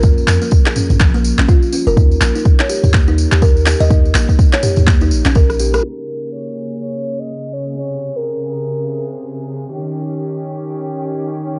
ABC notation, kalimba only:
X:1
M:4/4
L:1/16
Q:"Swing 16ths" 1/4=124
K:Bbdor
V:1 name="Kalimba"
B, z F, B, z A D z F, B, z D F z D B | E z B, E z d G z B, E z G B z G e | E z B, E z d G z B, E z D B z G B | z16 |
z16 | z16 |]